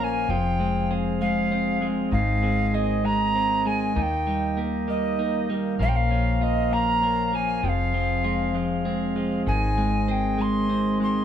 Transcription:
0.00 0.25 A#1 loud
0.00 0.30 A#2 medium
0.00 0.28 F3 medium
0.00 0.29 F3 medium
0.00 0.36 A#3 medium
0.00 0.28 C#4 medium
0.00 0.36 C#4 medium
0.00 0.36 F4 medium
0.00 0.28 A#4 medium
0.00 2.10 F5 medium
0.00 0.31 G#5 medium
0.00 0.05 A#5 medium
0.29 2.09 F1 loud
0.29 2.11 F3 medium
0.29 2.12 F3 medium
0.29 2.13 F3 medium
0.29 3.93 C4 medium
0.29 3.93 G#4 medium
0.29 0.91 G5 medium
0.60 1.21 G#3 medium
0.60 1.51 C4 medium
0.91 1.51 C4 medium
0.91 2.19 G#4 medium
1.21 1.81 G#3 medium
1.21 1.82 G#3 medium
1.21 1.86 F5 medium
1.51 2.19 C4 medium
1.81 2.18 G#3 medium
1.81 2.19 G#3 medium
2.12 3.92 G#1 loud
2.12 3.96 G#2 medium
2.12 5.76 D#3 medium
2.12 3.95 D#3 medium
2.12 5.75 D#5 medium
2.12 2.76 F5 medium
2.43 3.03 G#3 medium
2.43 3.34 C4 medium
2.74 3.34 C4 medium
2.74 4.02 G#4 medium
2.74 3.07 D#5 medium
3.04 3.64 G#3 medium
3.04 3.68 A#5 medium
3.35 4.03 C4 medium
3.66 4.02 G#3 medium
3.66 3.98 G#5 medium
3.95 5.76 D#2 loud
3.95 5.80 D#3 medium
3.95 5.78 A#3 medium
3.95 5.78 G4 medium
3.95 4.03 G#5 medium
4.02 4.58 G5 medium
4.27 4.87 G3 medium
4.27 5.18 D#4 medium
4.57 5.19 A#3 medium
4.57 5.86 G4 medium
4.88 5.49 G3 medium
4.88 5.49 A#3 medium
4.88 5.54 D#5 medium
5.19 5.86 A#3 medium
5.19 5.86 D#4 medium
5.50 5.86 G3 medium
5.50 5.86 A#3 medium
5.79 7.59 A#1 loud
5.79 7.64 A#2 medium
5.79 7.62 F3 medium
5.79 9.43 F3 medium
5.79 7.62 C#4 medium
5.79 7.61 A#4 medium
5.79 9.43 F5 medium
5.79 5.90 F5 medium
5.89 5.98 G5 medium
5.96 6.45 F5 loud
6.11 6.72 F3 medium
6.11 7.01 C#4 medium
6.41 7.02 A#3 medium
6.41 7.69 F4 medium
6.41 6.74 D#5 medium
6.71 7.33 F3 medium
6.71 7.31 A#3 medium
6.71 7.37 A#5 loud
7.02 7.70 A#3 medium
7.02 7.69 C#4 medium
7.32 7.70 F3 medium
7.32 7.69 A#3 medium
7.32 7.66 G#5 medium
7.63 9.43 F1 loud
7.63 9.47 F2 medium
7.63 9.46 F3 medium
7.63 11.25 C4 medium
7.63 11.25 G#4 medium
7.63 7.70 G5 medium
7.69 8.56 F5 medium
7.94 8.54 F3 medium
7.94 8.85 C4 medium
8.24 8.85 G#3 medium
8.24 9.53 F4 medium
8.55 9.15 F3 medium
8.55 9.15 G#3 medium
8.85 9.53 G#3 medium
8.85 9.53 C4 medium
9.16 9.53 F3 medium
9.16 9.53 G#3 medium
9.47 11.25 G#1 medium
9.47 11.25 G#2 medium
9.47 11.25 D#3 medium
9.47 11.25 D#5 medium
9.47 10.13 G#5 medium
9.78 10.38 G#3 medium
9.78 10.68 C4 medium
10.08 10.68 C4 medium
10.08 11.25 G#4 medium
10.08 10.43 G5 medium
10.38 10.99 G#3 medium
10.38 11.01 C6 loud
10.69 11.25 C4 medium
11.00 11.25 G#3 medium
11.00 11.25 C6 medium

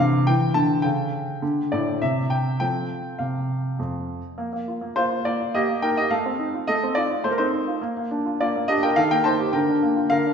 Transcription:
0.00 0.26 C3 medium
0.00 0.28 D3 medium
0.00 0.28 E3 medium
0.00 0.28 F3 medium
0.00 0.23 F4 soft
0.00 0.26 F5 medium
0.00 0.28 A5 medium
0.27 0.54 E3 medium
0.27 0.55 G5 medium
0.54 0.82 D3 medium
0.54 0.84 A5 medium
0.82 1.26 C#3 medium
0.82 1.38 A4 soft
0.82 1.70 G5 medium
1.42 1.70 D3 medium
1.72 2.00 A2 medium
1.72 2.01 D5 medium
2.02 2.44 C3 medium
2.02 2.31 E5 medium
2.30 2.58 G5 medium
2.60 3.02 F3 soft
2.60 3.08 C4 soft
2.60 3.08 A4 soft
2.60 3.19 G5 medium
3.19 3.61 C3 soft
3.19 4.07 F5 medium
3.79 4.20 F2 medium
4.38 4.51 A#3 medium
4.53 4.76 A#3 soft
4.68 4.90 F4 soft
4.81 4.95 A#3 soft
4.96 5.24 A#3 medium
4.96 5.09 F4 medium
4.96 5.24 C5 medium
5.11 5.25 F4 soft
5.25 5.48 A#3 soft
5.25 5.39 F4 medium
5.25 5.53 D5 medium
5.40 5.54 F4 soft
5.54 5.67 A#3 medium
5.54 5.81 G4 medium
5.54 5.82 D#5 medium
5.68 5.91 A#3 soft
5.82 6.05 D#4 medium
5.82 5.96 A#4 medium
5.82 5.96 G5 medium
5.97 6.11 G4 medium
5.97 6.11 D#5 medium
6.11 6.67 A3 medium
6.11 6.64 A4 medium
6.11 6.68 F5 medium
6.26 6.48 C4 soft
6.39 6.62 D#4 medium
6.54 6.76 F4 soft
6.67 7.23 A3 medium
6.67 6.95 A4 medium
6.67 6.96 D#5 medium
6.83 7.06 C4 medium
6.95 7.19 D#4 medium
6.95 7.09 F4 medium
6.95 7.24 D5 medium
7.10 7.34 F4 medium
7.24 7.81 A3 medium
7.24 7.32 C5 medium
7.31 7.39 A#4 medium
7.38 7.63 C4 soft
7.38 7.52 D#4 medium
7.38 7.83 C5 medium
7.54 7.77 D#4 soft
7.67 7.83 F4 soft
7.82 7.95 A#3 medium
7.97 8.20 A#3 soft
8.11 8.34 D4 medium
8.26 8.40 F4 soft
8.40 8.54 A#3 medium
8.40 8.67 F4 medium
8.40 8.69 D5 medium
8.56 8.78 A#3 medium
8.68 8.92 D4 medium
8.68 8.82 G4 medium
8.68 8.83 D#5 loud
8.83 8.97 F4 medium
8.83 8.97 A#4 medium
8.83 8.97 G5 medium
8.96 9.52 D#3 medium
8.96 9.10 A4 medium
8.96 9.11 F5 loud
9.11 9.34 A#3 medium
9.11 9.25 A#4 medium
9.11 9.25 G5 loud
9.24 9.48 D#4 medium
9.24 9.52 C5 medium
9.24 9.53 A5 medium
9.40 9.54 G4 medium
9.53 10.09 D3 medium
9.53 10.07 A#4 medium
9.53 10.10 G5 medium
9.69 9.91 D4 medium
9.83 10.05 A#3 medium
9.96 10.19 F4 medium
10.10 10.34 D3 medium
10.10 10.34 A#4 medium
10.10 10.34 F5 medium
10.27 10.34 D4 medium

